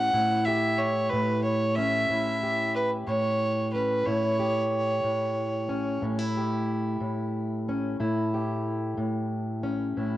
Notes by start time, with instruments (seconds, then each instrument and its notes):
Already playing: steel-string acoustic guitar A2 C#4 E4 G4, fiddle F#5
0.14 steel-string acoustic guitar A2 E4
0.45 steel-string acoustic guitar G4, fiddle E5
0.78 fiddle C#5
1.10 steel-string acoustic guitar A2, fiddle B4
1.44 fiddle C#5
1.76 steel-string acoustic guitar C#4, fiddle E5
2.09 steel-string acoustic guitar A2 E4
2.43 steel-string acoustic guitar G4
2.75 fiddle B4
3.07 steel-string acoustic guitar A2, fiddle C#5
3.73 steel-string acoustic guitar C#4, fiddle B4
4.06 steel-string acoustic guitar A2 E4, fiddle C#5
4.39 steel-string acoustic guitar G4
5.04 steel-string acoustic guitar A2
5.69 steel-string acoustic guitar C#4
6.02 steel-string acoustic guitar A2 C#4
6.19 steel-string acoustic guitar E4
6.37 steel-string acoustic guitar G4
7.00 steel-string acoustic guitar A2
7.69 steel-string acoustic guitar C#4
8.00 steel-string acoustic guitar A2 E4
8.34 steel-string acoustic guitar G4
8.98 steel-string acoustic guitar A2
9.63 steel-string acoustic guitar C#4
9.97 steel-string acoustic guitar A2 E4